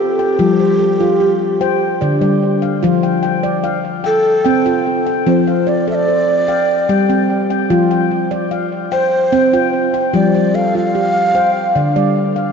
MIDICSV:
0, 0, Header, 1, 3, 480
1, 0, Start_track
1, 0, Key_signature, -1, "major"
1, 0, Tempo, 811908
1, 234, Time_signature, 3, 2, 24, 8
1, 7404, End_track
2, 0, Start_track
2, 0, Title_t, "Native American-style wooden flute"
2, 0, Program_c, 0, 77
2, 0, Note_on_c, 0, 67, 92
2, 1433, Note_off_c, 0, 67, 0
2, 2402, Note_on_c, 0, 69, 108
2, 2856, Note_off_c, 0, 69, 0
2, 3127, Note_on_c, 0, 72, 83
2, 3361, Note_on_c, 0, 74, 94
2, 3370, Note_off_c, 0, 72, 0
2, 3480, Note_off_c, 0, 74, 0
2, 3489, Note_on_c, 0, 76, 94
2, 3517, Note_on_c, 0, 74, 102
2, 3523, Note_off_c, 0, 76, 0
2, 4298, Note_off_c, 0, 74, 0
2, 5274, Note_on_c, 0, 72, 104
2, 5730, Note_off_c, 0, 72, 0
2, 5997, Note_on_c, 0, 74, 91
2, 6238, Note_on_c, 0, 77, 112
2, 6247, Note_off_c, 0, 74, 0
2, 6356, Note_off_c, 0, 77, 0
2, 6370, Note_on_c, 0, 77, 107
2, 7176, Note_off_c, 0, 77, 0
2, 7404, End_track
3, 0, Start_track
3, 0, Title_t, "Handpan"
3, 0, Program_c, 1, 114
3, 0, Note_on_c, 1, 60, 94
3, 0, Note_on_c, 1, 65, 65
3, 0, Note_on_c, 1, 79, 57
3, 106, Note_off_c, 1, 79, 0
3, 112, Note_off_c, 1, 65, 0
3, 113, Note_on_c, 1, 79, 60
3, 160, Note_off_c, 1, 60, 0
3, 230, Note_on_c, 1, 55, 80
3, 231, Note_on_c, 1, 53, 99
3, 354, Note_off_c, 1, 79, 0
3, 354, Note_on_c, 1, 72, 57
3, 470, Note_on_c, 1, 69, 51
3, 472, Note_off_c, 1, 55, 0
3, 594, Note_on_c, 1, 65, 78
3, 711, Note_on_c, 1, 67, 65
3, 714, Note_off_c, 1, 72, 0
3, 834, Note_off_c, 1, 69, 0
3, 835, Note_off_c, 1, 65, 0
3, 951, Note_on_c, 1, 79, 63
3, 952, Note_on_c, 1, 72, 67
3, 1052, Note_off_c, 1, 53, 0
3, 1075, Note_off_c, 1, 67, 0
3, 1189, Note_on_c, 1, 74, 68
3, 1194, Note_off_c, 1, 72, 0
3, 1194, Note_on_c, 1, 50, 89
3, 1302, Note_off_c, 1, 74, 0
3, 1309, Note_on_c, 1, 74, 61
3, 1310, Note_on_c, 1, 55, 85
3, 1315, Note_off_c, 1, 79, 0
3, 1550, Note_on_c, 1, 77, 61
3, 1554, Note_off_c, 1, 55, 0
3, 1604, Note_off_c, 1, 50, 0
3, 1671, Note_on_c, 1, 65, 80
3, 1672, Note_off_c, 1, 74, 0
3, 1678, Note_on_c, 1, 53, 106
3, 1793, Note_off_c, 1, 77, 0
3, 1793, Note_on_c, 1, 79, 58
3, 1901, Note_off_c, 1, 79, 0
3, 1908, Note_on_c, 1, 79, 57
3, 1914, Note_off_c, 1, 65, 0
3, 2029, Note_on_c, 1, 74, 71
3, 2150, Note_on_c, 1, 77, 73
3, 2273, Note_off_c, 1, 79, 0
3, 2274, Note_off_c, 1, 74, 0
3, 2388, Note_on_c, 1, 79, 65
3, 2400, Note_off_c, 1, 79, 0
3, 2496, Note_off_c, 1, 53, 0
3, 2514, Note_off_c, 1, 77, 0
3, 2628, Note_on_c, 1, 79, 69
3, 2634, Note_on_c, 1, 60, 104
3, 2747, Note_off_c, 1, 79, 0
3, 2754, Note_on_c, 1, 65, 72
3, 2754, Note_on_c, 1, 79, 62
3, 2987, Note_off_c, 1, 79, 0
3, 2995, Note_on_c, 1, 79, 56
3, 2996, Note_off_c, 1, 65, 0
3, 3044, Note_off_c, 1, 60, 0
3, 3113, Note_on_c, 1, 53, 98
3, 3116, Note_on_c, 1, 60, 87
3, 3236, Note_off_c, 1, 79, 0
3, 3238, Note_on_c, 1, 77, 55
3, 3351, Note_on_c, 1, 74, 57
3, 3356, Note_off_c, 1, 60, 0
3, 3474, Note_on_c, 1, 69, 71
3, 3596, Note_off_c, 1, 77, 0
3, 3597, Note_on_c, 1, 72, 62
3, 3714, Note_off_c, 1, 74, 0
3, 3716, Note_off_c, 1, 69, 0
3, 3832, Note_on_c, 1, 77, 71
3, 3834, Note_on_c, 1, 79, 60
3, 3932, Note_off_c, 1, 53, 0
3, 3957, Note_off_c, 1, 72, 0
3, 4068, Note_off_c, 1, 79, 0
3, 4074, Note_off_c, 1, 77, 0
3, 4074, Note_on_c, 1, 55, 91
3, 4076, Note_on_c, 1, 79, 62
3, 4188, Note_off_c, 1, 79, 0
3, 4195, Note_on_c, 1, 60, 75
3, 4195, Note_on_c, 1, 79, 57
3, 4429, Note_off_c, 1, 79, 0
3, 4435, Note_off_c, 1, 60, 0
3, 4436, Note_on_c, 1, 79, 57
3, 4483, Note_off_c, 1, 55, 0
3, 4554, Note_on_c, 1, 53, 103
3, 4554, Note_on_c, 1, 65, 78
3, 4668, Note_off_c, 1, 79, 0
3, 4675, Note_on_c, 1, 79, 56
3, 4794, Note_off_c, 1, 65, 0
3, 4913, Note_on_c, 1, 74, 72
3, 5032, Note_on_c, 1, 77, 61
3, 5034, Note_off_c, 1, 79, 0
3, 5154, Note_off_c, 1, 74, 0
3, 5272, Note_on_c, 1, 79, 72
3, 5284, Note_off_c, 1, 79, 0
3, 5371, Note_off_c, 1, 53, 0
3, 5394, Note_off_c, 1, 77, 0
3, 5512, Note_on_c, 1, 60, 104
3, 5513, Note_on_c, 1, 79, 66
3, 5630, Note_off_c, 1, 79, 0
3, 5636, Note_on_c, 1, 65, 79
3, 5637, Note_on_c, 1, 79, 65
3, 5868, Note_off_c, 1, 79, 0
3, 5875, Note_off_c, 1, 65, 0
3, 5875, Note_on_c, 1, 79, 58
3, 5921, Note_off_c, 1, 60, 0
3, 5992, Note_on_c, 1, 53, 99
3, 5994, Note_on_c, 1, 55, 83
3, 6114, Note_off_c, 1, 79, 0
3, 6115, Note_on_c, 1, 72, 59
3, 6233, Note_off_c, 1, 55, 0
3, 6233, Note_on_c, 1, 69, 62
3, 6354, Note_on_c, 1, 65, 67
3, 6473, Note_off_c, 1, 72, 0
3, 6474, Note_on_c, 1, 67, 70
3, 6594, Note_off_c, 1, 65, 0
3, 6594, Note_off_c, 1, 69, 0
3, 6709, Note_on_c, 1, 72, 72
3, 6709, Note_on_c, 1, 79, 62
3, 6809, Note_off_c, 1, 53, 0
3, 6834, Note_off_c, 1, 67, 0
3, 6949, Note_on_c, 1, 74, 62
3, 6950, Note_off_c, 1, 72, 0
3, 6950, Note_on_c, 1, 50, 90
3, 7064, Note_off_c, 1, 74, 0
3, 7071, Note_off_c, 1, 79, 0
3, 7071, Note_on_c, 1, 55, 74
3, 7071, Note_on_c, 1, 74, 69
3, 7307, Note_on_c, 1, 77, 54
3, 7311, Note_off_c, 1, 55, 0
3, 7359, Note_off_c, 1, 50, 0
3, 7404, Note_off_c, 1, 74, 0
3, 7404, Note_off_c, 1, 77, 0
3, 7404, End_track
0, 0, End_of_file